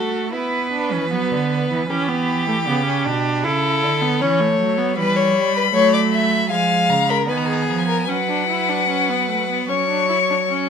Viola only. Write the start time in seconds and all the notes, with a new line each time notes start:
Already playing: F#4
0.32 E4
0.73 D4
0.92 C#4
1.11 B3
1.89 C#4
2.08 B3
2.48 A3
2.67 B3
2.86 C#4
3.05 D4
3.44 E4
4.02 B3
4.21 C#4
4.40 A3
4.78 B3
4.97 G3
5.74 A3
6.50 G#3
7.28 B3
8.08 C#4
8.28 D4
8.49 E4
8.69 D4
8.89 C#4
9.09 B3
9.29 A3
9.49 B3
9.69 C#4
9.89 D4
10.09 E4
10.30 D4
10.49 C#4